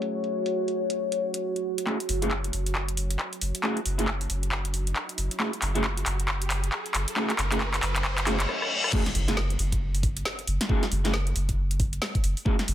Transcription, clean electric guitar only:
0.00 1.85 A3 medium
0.00 1.85 C#4 medium
0.00 1.85 E4 medium
0.00 1.85 F#4 medium
0.00 1.85 G#4 medium
1.86 1.95 A3 medium
1.86 1.95 C#4 medium
1.86 1.95 E4 medium
1.86 1.95 F#4 medium
1.86 1.95 G#4 medium
2.22 2.31 A3 medium
2.22 2.31 C#4 medium
2.22 2.31 E4 medium
2.22 2.31 F#4 medium
2.22 2.31 G#4 loud
3.63 3.77 A3 medium
3.63 3.77 C#4 medium
3.63 3.77 E4 medium
3.63 3.77 F#4 medium
3.63 3.77 G#4 medium
3.98 4.08 A3 medium
3.98 4.08 C#4 medium
3.98 4.08 E4 medium
3.98 4.08 F#4 medium
3.98 4.08 G#4 medium
5.39 5.48 A3 medium
5.39 5.48 C#4 medium
5.39 5.48 E4 medium
5.39 5.48 F#4 medium
5.39 5.48 G#4 medium
5.75 5.84 A3 medium
5.75 5.84 C#4 medium
5.75 5.84 E4 medium
5.75 5.84 F#4 medium
5.75 5.84 G#4 medium
7.16 7.30 A3 medium
7.16 7.30 C#4 medium
7.16 7.30 E4 medium
7.16 7.30 F#4 medium
7.16 7.30 G#4 medium
7.51 7.61 A3 medium
7.51 7.61 C#4 medium
7.51 7.61 E4 medium
7.51 7.61 F#4 medium
7.51 7.61 G#4 medium
8.26 8.35 A3 medium
8.26 8.35 C#4 medium
8.26 8.35 E4 medium
8.26 8.35 F#4 medium
8.26 8.35 G#4 medium
8.92 9.01 A3 medium
8.92 9.01 C#4 medium
8.92 9.01 E4 medium
8.92 9.01 F#4 medium
8.92 9.01 G#4 medium
9.28 9.37 A3 medium
9.28 9.37 C#4 medium
9.28 9.37 E4 medium
9.28 9.37 F#4 medium
9.28 9.37 G#4 medium
10.69 10.83 A3 medium
10.69 10.83 C#4 medium
10.69 10.83 E4 medium
10.69 10.83 F#4 medium
10.69 10.83 G#4 medium
11.04 11.13 A3 medium
11.04 11.14 C#4 medium
11.04 11.14 E4 medium
11.04 11.14 F#4 medium
11.04 11.14 G#4 medium
12.45 12.54 A3 medium
12.45 12.54 C#4 medium
12.45 12.54 E4 medium
12.45 12.54 F#4 medium
12.45 12.54 G#4 medium

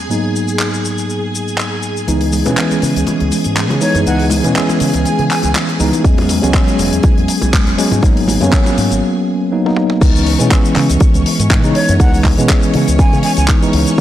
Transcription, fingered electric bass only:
2.08 2.41 C#2 medium
2.46 2.55 B2 medium
2.83 2.93 C#3 medium
2.96 3.05 C#2 medium
3.21 3.30 C#2 medium
3.46 3.70 G#2 medium
3.70 3.79 C#3 medium
3.95 4.04 F#2 medium
4.06 4.40 C#2 medium
4.45 4.54 B2 medium
4.81 4.91 C#3 loud
4.94 5.03 C#2 medium
5.19 5.28 C#3 loud
5.44 5.53 C#2 medium
5.80 5.90 C#2 medium
6.05 6.38 E2 medium
6.43 6.52 C#2 medium
6.79 6.89 E1 loud
6.93 7.01 E2 medium
7.04 muted fingered electric bass stroke soft
7.17 7.26 E2 medium
7.42 7.67 B1 medium
7.67 7.76 E1 loud
7.92 8.01 G#2 medium
8.03 8.36 G#1 medium
8.41 8.50 F#2 medium
8.78 8.88 G#2 loud
8.91 9.00 G#1 medium
10.02 10.35 C#2 medium
10.40 10.49 B2 medium
10.77 10.87 C#3 loud
10.90 10.98 C#2 medium
11.15 11.23 C#2 medium
11.39 11.64 G#2 medium
11.64 11.73 C#3 loud
11.89 11.98 F#2 medium
12.00 12.33 C#2 loud
12.38 12.47 B2 medium
12.75 12.85 C#3 loud
12.88 12.97 C#2 medium
13.13 13.21 C#3 loud
13.37 13.46 C#2 medium
13.74 13.84 C#2 loud

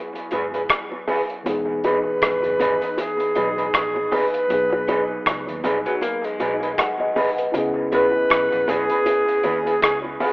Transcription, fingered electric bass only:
0.33 0.66 G#1 medium
1.48 2.14 E1 loud
2.23 2.42 G#1 medium
2.46 2.59 F#1 medium
2.62 2.81 G#1 medium
3.38 3.71 B1 loud
3.75 4.08 A#1 medium
4.52 5.18 B1 loud
5.27 5.46 C#2 medium
5.50 5.63 D#2 medium
5.66 5.85 A#1 medium
6.41 6.75 B1 medium
7.55 8.22 C#2 loud
8.31 8.50 B1 medium
8.54 8.67 A#1 medium
8.69 8.88 B1 medium
9.45 9.79 D#2 medium
9.83 10.17 C#2 medium

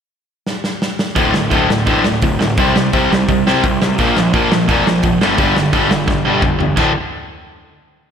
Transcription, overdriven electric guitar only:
1.15 1.32 D2 medium
1.15 1.33 A2 medium
1.15 1.33 D3 medium
1.34 1.49 D2 medium
1.34 1.49 A2 medium
1.50 1.67 D2 loud
1.50 1.68 A2 loud
1.50 1.68 D3 medium
1.68 1.85 D2 medium
1.68 1.85 A2 medium
1.86 2.03 D2 loud
1.86 2.03 A2 medium
1.86 2.04 D3 loud
2.05 2.20 D2 medium
2.05 2.21 A2 medium
2.23 2.38 D2 medium
2.23 2.39 A2 medium
2.39 2.55 D2 medium
2.39 2.56 A2 medium
2.58 2.74 C3 medium
2.58 2.75 G3 medium
2.58 2.75 C4 loud
2.76 2.92 C3 medium
2.76 2.92 G3 medium
2.93 3.10 C3 medium
2.93 3.10 G3 loud
2.93 3.10 C4 loud
3.12 3.27 C3 medium
3.12 3.27 G3 medium
3.29 3.44 C3 medium
3.29 3.45 G3 medium
3.47 3.63 C3 medium
3.47 3.63 G3 medium
3.47 3.63 C4 medium
3.64 3.80 C3 medium
3.64 3.80 G3 medium
3.82 3.97 C3 medium
3.82 3.97 G3 medium
3.99 4.15 A#2 medium
3.99 4.15 F3 loud
3.99 4.16 A#3 medium
4.16 4.32 A#2 medium
4.16 4.32 F3 medium
4.33 4.50 A#2 medium
4.33 4.50 F3 loud
4.33 4.50 A#3 loud
4.52 4.67 A#2 medium
4.52 4.67 F3 medium
4.68 4.85 A#2 medium
4.68 4.84 F3 medium
4.68 4.85 A#3 loud
4.86 5.02 A#2 medium
4.86 5.02 F3 medium
5.03 5.19 A#2 medium
5.03 5.19 F3 medium
5.21 5.37 G2 medium
5.21 5.37 D3 loud
5.21 5.37 G3 medium
5.38 5.54 G2 medium
5.38 5.55 D3 medium
5.38 5.55 G3 loud
5.55 5.71 G2 medium
5.55 5.71 D3 medium
5.73 5.89 G2 medium
5.73 5.90 D3 loud
5.73 5.90 G3 medium
5.90 6.06 G2 medium
5.90 6.06 D3 medium
6.07 6.23 G2 medium
6.07 6.23 D3 medium
6.25 6.41 G2 medium
6.25 6.42 D3 medium
6.25 6.42 G3 loud
6.42 6.57 G2 medium
6.42 6.58 D3 medium
6.59 6.75 G2 medium
6.59 6.75 D3 medium
6.76 6.90 D2 medium
6.76 6.91 A2 loud
6.76 6.91 D3 medium

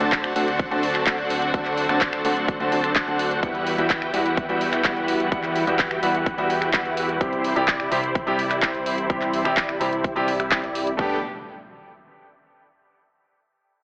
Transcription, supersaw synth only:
0.00 0.33 D4 medium
0.00 0.33 F#4 medium
0.00 0.33 A4 medium
0.00 0.33 C5 medium
0.00 0.33 A5 loud
0.36 0.68 D4 medium
0.36 0.68 F#4 medium
0.36 0.68 A4 medium
0.36 0.68 C5 medium
0.36 0.68 F#5 medium
0.71 1.04 D4 medium
0.71 1.04 F#4 medium
0.71 1.04 A4 medium
0.71 1.04 C5 medium
0.71 1.04 A5 medium
1.07 1.51 D4 medium
1.07 1.51 F#4 medium
1.07 1.51 C5 medium
1.07 1.51 F#5 loud
1.54 1.87 D4 medium
1.54 1.87 F#4 medium
1.54 1.87 A4 medium
1.54 1.87 C5 medium
1.54 1.87 F#5 medium
1.89 2.22 D4 loud
1.89 2.22 F#4 medium
1.89 2.22 A4 medium
1.89 2.22 C5 medium
1.89 2.22 A5 loud
2.25 2.57 D4 medium
2.25 2.57 F#4 medium
2.25 2.57 A4 medium
2.25 2.57 C5 medium
2.25 2.57 F#5 medium
2.60 2.93 D4 medium
2.60 2.93 F#4 medium
2.60 2.93 A4 medium
2.60 2.93 C5 medium
2.60 2.93 A5 medium
2.96 3.40 D4 medium
2.96 3.40 F#4 medium
2.96 3.40 C5 medium
2.96 3.40 F#5 loud
3.43 3.75 E4 medium
3.43 3.75 G4 medium
3.43 3.75 B4 medium
3.78 4.11 E4 medium
3.78 4.11 F#4 medium
3.78 4.11 G4 medium
3.78 4.11 B4 medium
3.78 4.11 G5 loud
4.14 4.46 E4 medium
4.14 4.46 F#4 medium
4.14 4.46 G4 medium
4.14 4.46 B4 medium
4.14 4.46 F#5 medium
4.49 4.82 E4 medium
4.49 4.82 F#4 medium
4.49 4.82 G4 medium
4.49 4.82 B4 medium
4.49 4.82 G5 medium
5.32 5.64 E4 medium
5.32 5.64 F#4 medium
5.32 5.64 G4 medium
5.32 5.64 B4 medium
5.67 6.00 E4 medium
5.67 6.00 F#4 medium
5.67 6.00 G4 medium
5.67 6.00 B4 medium
5.67 6.00 G5 loud
6.03 6.35 E4 medium
6.03 6.35 F#4 medium
6.03 6.35 G4 medium
6.03 6.35 B4 medium
6.03 6.35 F#5 medium
6.38 6.71 E4 medium
6.38 6.71 F#4 medium
6.38 6.71 G4 medium
6.38 6.71 B4 medium
6.38 6.71 G5 medium
6.74 7.18 E4 medium
6.74 7.18 F#4 medium
6.74 7.18 B4 medium
6.74 7.18 F#5 loud
7.21 7.53 E4 medium
7.21 7.53 G4 medium
7.21 7.53 C5 loud
7.56 7.89 E4 medium
7.56 7.89 G4 medium
7.56 7.89 D5 loud
7.92 8.24 E4 medium
7.92 8.24 G4 medium
7.92 8.24 C5 loud
8.27 8.60 E4 medium
8.27 8.60 G4 medium
8.27 8.60 D5 medium
8.63 9.07 E4 medium
8.63 9.07 G4 medium
8.63 9.07 C5 loud
9.10 9.42 E4 medium
9.10 9.42 G4 medium
9.10 9.42 C5 loud
9.45 9.78 E4 medium
9.45 9.78 G4 medium
9.45 9.78 D5 loud
9.81 10.13 E4 medium
9.81 10.13 G4 medium
9.81 10.13 C5 medium
10.16 10.26 E4 medium
10.16 10.26 G4 medium
10.16 10.26 D5 medium
10.28 10.38 E4 medium
10.28 10.38 G4 medium
10.28 10.38 D5 medium
10.40 10.61 E4 medium
10.40 10.61 G4 medium
10.40 10.61 E5 loud
10.63 10.90 E4 medium
10.63 10.90 G4 medium
10.63 10.90 D5 loud
10.99 11.16 D4 medium
10.99 11.16 G4 medium
10.99 11.16 A4 medium
10.99 11.16 B4 medium
10.99 11.16 G5 loud

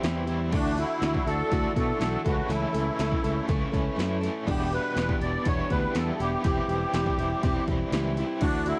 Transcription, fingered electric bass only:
0.03 0.53 E2 medium
0.53 0.82 D2 loud
1.02 1.17 D2 loud
1.26 1.41 D2 medium
1.52 1.67 D2 loud
1.76 1.91 B2 medium
2.00 2.15 B1 loud
2.26 2.40 C#2 medium
2.49 2.64 C#2 loud
2.74 2.89 C#2 medium
2.99 3.14 C#2 medium
3.24 3.39 C#2 medium
3.49 3.64 C#2 loud
3.73 3.88 C#2 medium
3.98 4.28 F#2 medium
4.47 4.77 E1 loud
4.96 5.11 E1 medium
5.21 5.36 E1 medium
5.46 5.61 E1 loud
5.71 5.85 D2 medium
5.95 6.10 E2 medium
6.20 6.35 E1 medium
6.45 6.59 E1 loud
6.68 6.83 E1 medium
6.94 7.09 E1 medium
7.18 7.33 E1 medium
7.43 7.58 E1 loud
7.68 7.82 E1 medium
7.92 8.22 C#2 medium
8.41 8.71 D2 loud

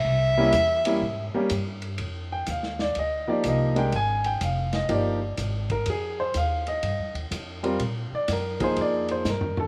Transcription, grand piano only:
0.37 0.52 G3 medium
0.37 0.52 A#3 medium
0.37 0.52 C#4 medium
0.37 0.52 E4 medium
0.86 1.00 G3 medium
0.86 1.00 A#3 medium
0.86 1.00 C#4 medium
0.86 1.00 E4 medium
1.34 1.49 G3 medium
1.34 1.49 A#3 medium
1.34 1.49 C#4 medium
1.34 1.49 G4 medium
2.32 2.47 G5 medium
2.50 2.80 F5 medium
2.81 2.96 D5 medium
2.99 3.28 D#5 medium
3.28 3.73 F3 medium
3.28 3.73 A#3 medium
3.28 3.73 D#4 medium
3.28 3.73 G4 medium
3.28 3.44 D5 medium
3.48 3.77 D#5 medium
3.76 3.90 G#3 medium
3.76 3.90 D4 medium
3.76 3.91 G4 medium
3.76 3.91 A#4 medium
3.76 3.93 G5 medium
3.96 4.25 G#5 loud
4.26 4.41 G5 medium
4.44 4.73 F5 medium
4.75 4.89 D#5 medium
4.89 5.18 F3 medium
4.89 5.18 A#3 medium
4.89 5.18 D#4 medium
4.89 5.18 G4 medium
4.89 5.67 D5 medium
5.72 5.86 A#4 medium
5.90 6.19 G#4 medium
6.20 6.35 C5 medium
6.37 6.67 F5 medium
6.68 7.13 D#5 medium
7.63 7.78 G3 medium
7.63 7.78 C4 medium
7.63 7.78 F4 medium
7.63 7.79 A#4 medium
8.15 8.29 D5 medium
8.32 8.62 A#4 medium
8.60 9.22 F3 medium
8.60 9.22 A#3 medium
8.60 9.22 D#4 medium
8.60 9.22 G#4 medium
8.60 8.78 C5 medium
8.81 9.10 D5 medium
9.11 9.26 C5 medium
9.30 9.59 A#4 medium
9.60 9.67 A4 medium

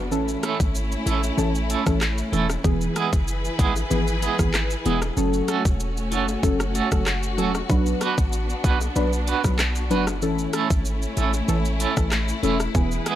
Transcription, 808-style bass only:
0.00 0.13 F#1 medium
0.11 0.36 A1 loud
0.60 0.96 G#1 medium
1.06 1.31 A1 medium
1.38 1.76 A1 loud
1.86 2.23 A1 loud
2.33 2.57 E1 medium
2.64 2.89 E1 loud
3.13 3.49 F#1 medium
3.59 3.84 G#1 loud
3.91 4.28 G#1 loud
4.39 4.75 G#1 medium
4.86 5.10 E1 loud
5.17 5.42 F#1 loud
5.65 6.13 E1 medium
6.12 6.36 F#1 loud
6.43 6.81 F#1 loud
6.92 7.39 F#1 medium
7.38 7.63 E1 medium
7.70 7.94 B1 loud
8.18 8.54 A1 medium
8.64 8.89 B1 medium
8.96 9.34 B1 loud
9.44 9.92 B1 loud
9.91 10.24 F#1 loud
10.22 10.47 A1 loud
10.70 11.07 G#1 medium
11.17 11.42 A1 medium
11.48 11.86 A1 loud
11.97 12.33 A1 loud
12.43 12.68 E1 medium
12.75 13.00 E1 loud

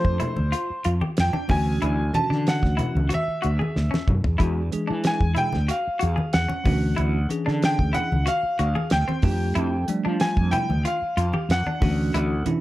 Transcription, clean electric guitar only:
0.20 0.37 E4 medium
0.52 0.69 F4 medium
0.85 0.94 F4 medium
1.01 1.18 G4 medium
1.33 1.50 D4 medium
1.82 1.99 E4 medium
2.30 2.47 D4 medium
2.77 2.94 E4 medium
3.09 3.27 F#4 medium
3.42 3.51 F#4 medium
3.59 3.76 G#4 medium
3.91 4.08 C#4 medium
4.38 4.56 E4 medium
4.87 5.05 D4 medium
5.35 5.52 E4 medium
5.68 5.86 F#4 medium
5.99 6.09 F#4 medium
6.16 6.33 G#4 medium
6.48 6.66 C#4 medium
6.96 7.14 E4 medium
7.46 7.63 D4 medium
7.93 8.10 E4 medium
8.26 8.43 F#4 medium
8.59 8.68 F#4 medium
8.75 8.92 G#4 medium
9.08 9.25 C4 medium
9.55 9.72 E4 medium
10.05 10.22 D4 medium
10.53 10.70 E4 medium
10.85 11.02 F4 medium
11.17 11.26 F4 medium
11.34 11.51 G4 medium
11.67 11.83 D4 medium
12.14 12.31 E4 medium

